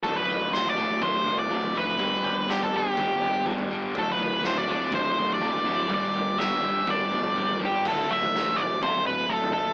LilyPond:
<<
  \new Staff \with { instrumentName = "Lead electric guitar" } { \time 4/4 \key d \dorian \tempo 4 = 123 a'16 b'8. c''16 d''8. c''8. d''8. b'8~ | b'4 g'16 a'16 g'4. r4 | a'16 b'8. c''16 d''8. c''8. d''4~ d''16 | d''4 e''4 d''4. g'8 |
a'8 e''4 d''8 c''8 b'8 a'8 a'8 | }
  \new Staff \with { instrumentName = "Clean electric guitar" } { \time 4/4 \key d \dorian d,8 f'8 a8 f'8 a8 d8 f'8 a8 | g,8 g'8 d'8 g'8 d'8 b8 g'8 d'8 | d,8 f'8 a8 f'8 a8 d8 f'8 a8 | g,8 g'8 d'8 g'8 d'8 b8 g'8 d'8 |
<d, a, d a f'>8 <d a f'>8 <a, d a f'>4 <d, a, d a f'>8 <d a f'>8 <a, d a f'>8 <d a f'>8 | }
  \new Staff \with { instrumentName = "Overdriven electric guitar" } { \clef bass \time 4/4 \key d \dorian <d, a, d>4 <d, a, d>8 <d, a, d>8 <d, a, d>4 <d, a, d>8 <d, a, d>8 | <g, d g>4 <g, d g>8 <g, d g>8 <g, d g>4 <g, d g>8 <g, d g>8 | <d, a, d>4 <d, a, d>8 <d, a, d>8 <d, a, d>4 <d, a, d>8 <d, a, d>8 | <g, d g>4 <g, d g>8 <g, d g>8 <g, d g>4 <g, d g>8 <g, d g>8 |
r1 | }
  \new Staff \with { instrumentName = "Picked electric bass" } { \clef bass \time 4/4 \key d \dorian d,,8 d,,8 d,,8 d,,8 d,,8 d,,8 d,,8 f,,8 | g,,8 g,,8 g,,8 g,,8 g,,8 g,,8 g,,8 g,,8 | d,,8 d,,8 d,,8 d,,8 d,,8 d,,8 d,,8 d,,8 | g,,8 g,,8 g,,8 g,,8 g,,8 g,,8 g,,8 g,,8 |
d,,8 d,,8 a,,8 d,,8 d,,8 d,,8 d,,8 fis,,8 | }
  \new DrumStaff \with { instrumentName = "Drums" } \drummode { \time 4/4 <bd tomfh>8 tomfh8 sn16 tomfh16 toml8 <bd tomfh>8 tomfh8 toml16 tomfh8. | <bd tomfh>8 tomfh8 sn16 tomfh8. <bd tomfh>8 tomfh8 toml16 tomfh8. | <bd tomfh>8 tomfh8 sn16 tomfh16 toml8 <bd tomfh>8 tomfh8 toml16 tomfh8. | <bd tomfh>8 tomfh8 sn16 tomfh8. <bd tomfh>8 tomfh16 toml16 toml16 tomfh8. |
<cymc bd tomfh>8. tomfh16 sn8 tomfh8 <bd toml>16 tomfh8. r16 tomfh8. | }
>>